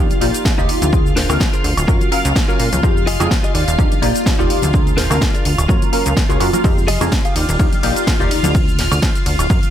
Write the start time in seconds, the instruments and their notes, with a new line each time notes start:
Already playing: analog polysynth A#3 D4 D#4 F4 G4, clean electric guitar D#4 F4 G4 D5, string machine F4 F5
0.10 closed hi-hat, high conga, cabasa, maracas
0.21 analog synth bass A#1, analog polysynth A#3 D#4 F4 G4 D5, muted clean electric guitar stroke, open hi-hat
0.34 closed hi-hat, cabasa, maracas
0.45 kick, snare, cabasa, maracas
0.58 analog synth bass D#1, analog polysynth A#3 D#4 F4 G4, clean electric guitar D#4 F4 G4 D#5, cabasa, maracas
0.69 analog synth bass D2, open hi-hat
0.82 analog synth bass D2, muted clean electric guitar stroke, closed hi-hat, high conga, cabasa, maracas
0.92 analog polysynth A#3 C4 D4 F4 G#4, kick, cabasa, maracas
1.06 cabasa, maracas
1.16 analog synth bass D1, clean electric guitar D4 G#4 A#4 C5, snare, open hi-hat
1.29 analog synth bass D2, analog polysynth A#3 C4 D4 F4 A#4, open hi-hat, low conga, cabasa, high woodblock, maracas
1.40 muted clean electric guitar stroke, kick, snare, high conga, cabasa, maracas
1.53 clean electric guitar D4 G#4 A#4 C5, closed hi-hat, cabasa, maracas
1.64 analog synth bass D2, open hi-hat
1.77 analog synth bass D1, closed hi-hat, cabasa, high woodblock, maracas
1.87 analog synth bass F#2, analog polysynth A#3 C#4 F4 F#4 A#4, clean electric guitar F4 F#4 A#4 C#5, kick, cabasa, maracas
2.01 closed hi-hat, high conga, cabasa, maracas
2.11 analog polysynth F#3 A#3 C#4 A#4 F5, muted clean electric guitar stroke, open hi-hat
2.25 analog synth bass C#2, closed hi-hat, cabasa, maracas
2.36 kick, snare, cabasa, maracas
2.48 analog polysynth F#3 A#3 C#4 A#4 F5, clean electric guitar F4 F#4 A#4 C#5, cabasa, maracas
2.60 analog synth bass A#2, open hi-hat
2.72 analog synth bass C#2, muted clean electric guitar stroke, closed hi-hat, high conga, cabasa, maracas
2.83 analog synth bass F2, analog polysynth G#3 C4 D#4 F4 G4, kick, cabasa, maracas
2.97 cabasa, maracas
3.06 analog synth bass F1, clean electric guitar F4 G4 G#4 D#5, open hi-hat
3.20 analog synth bass F2, analog polysynth G#3 C4 D#4 F4 G#4, closed hi-hat, low conga, cabasa, high woodblock, maracas
3.31 kick, snare, high conga, cabasa, maracas
3.43 clean electric guitar F4 G4 G#4 D#5, closed hi-hat, cabasa, maracas
3.54 analog synth bass D#2, clean electric guitar D#4 F4 G4 D5, open hi-hat
3.68 analog synth bass D#1, closed hi-hat, cabasa, maracas
3.78 analog synth bass D#2, analog polysynth A#3 D4 D#4 F4 G4, kick, cabasa, maracas
3.92 closed hi-hat, high conga, cabasa, maracas
4.02 analog synth bass A#1, analog polysynth A#3 D#4 F4 G4 D5, muted clean electric guitar stroke, open hi-hat
4.15 closed hi-hat, cabasa, maracas
4.26 kick, snare, cabasa, maracas
4.39 analog synth bass D#1, analog polysynth A#3 D#4 F4 G4 D5, clean electric guitar D#4 F4 G4 D5, cabasa, maracas
4.50 analog synth bass D2, open hi-hat
4.62 analog synth bass D2, muted clean electric guitar stroke, closed hi-hat, high conga, cabasa, maracas
4.73 analog polysynth A#3 C4 D4 F4 G#4, kick, cabasa, maracas
4.87 closed hi-hat, cabasa, maracas
4.97 analog synth bass D1, clean electric guitar D4 G#4 A#4 C5, snare, open hi-hat
5.10 analog synth bass D2, analog polysynth A#3 C4 D4 F4 A#4, open hi-hat, low conga, cabasa, high woodblock, maracas
5.21 muted clean electric guitar stroke, kick, snare, high conga, cabasa, maracas
5.34 clean electric guitar D4 G#4 A#4 D5, closed hi-hat, cabasa, maracas
5.45 analog synth bass D2, open hi-hat
5.58 analog synth bass D1, closed hi-hat, cabasa, high woodblock, maracas
5.68 analog synth bass F#2, analog polysynth A#3 C#4 F4 F#4 A#4, clean electric guitar F4 F#4 A#4 C#5, kick, cabasa, maracas
5.82 closed hi-hat, high conga, cabasa, maracas
5.92 analog polysynth F#3 A#3 C#4 A#4 F5, muted clean electric guitar stroke, open hi-hat
6.06 analog synth bass C#2, closed hi-hat, cabasa, maracas
6.17 kick, snare, cabasa, maracas
6.29 analog synth bass C#2, analog polysynth A#3 C#4 F4 F#4 G#4, clean electric guitar F4 F#4 A#4 C#5, closed hi-hat, cabasa, maracas
6.40 analog synth bass F#2, analog polysynth A#3 C#4 F4 F#4 A#4, open hi-hat
6.53 analog polysynth A#3 C#4 F4 F#4 A#4, muted clean electric guitar stroke, closed hi-hat, high conga, cabasa, maracas
6.64 analog synth bass F2, analog polysynth G#3 C4 D#4 F4 G4, string machine F4 F5, kick, ride, cabasa, maracas
6.78 cabasa, maracas
6.87 analog synth bass F1, clean electric guitar F4 G4 G#4 D#5, open hi-hat, ride
7.01 analog synth bass F2, analog polysynth G#3 C4 D#4 F4 G#4, closed hi-hat, low conga, cabasa, high woodblock, maracas
7.11 muted clean electric guitar stroke, kick, snare, ride, high conga, cabasa, maracas
7.24 clean electric guitar F4 G4 G#4 F5, closed hi-hat, cabasa, maracas
7.35 analog synth bass D#2, clean electric guitar D#4 F4 G4 D5, open hi-hat, ride
7.49 analog synth bass D#1, closed hi-hat, cabasa, maracas
7.59 analog synth bass D#2, analog polysynth A#3 D4 D#4 F4 G4, kick, ride, cabasa, maracas
7.72 closed hi-hat, high conga, cabasa, maracas
7.83 analog synth bass A#1, analog polysynth A#3 D#4 F4 G4 D5, muted clean electric guitar stroke, open hi-hat, ride
7.96 closed hi-hat, cabasa, maracas
8.07 kick, snare, ride, cabasa, maracas
8.19 analog synth bass D#1, analog polysynth A#3 D#4 F4 G4 D5, clean electric guitar D#4 F4 G4 D5, cabasa, maracas
8.31 analog synth bass D2, open hi-hat, ride
8.43 analog synth bass D2, muted clean electric guitar stroke, closed hi-hat, high conga, cabasa, maracas
8.54 kick, ride, cabasa, maracas
8.67 cabasa, maracas
8.79 analog synth bass D1, snare, open hi-hat, ride
8.92 analog synth bass D2, open hi-hat, low conga, cabasa, high woodblock, maracas
9.02 kick, snare, ride, high conga, cabasa, maracas
9.15 closed hi-hat, cabasa, maracas
9.26 analog synth bass D2, open hi-hat, ride
9.39 analog synth bass D1, closed hi-hat, cabasa, high woodblock, maracas
9.50 analog synth bass F#2, kick, ride, cabasa, maracas
9.62 closed hi-hat, high conga, cabasa, maracas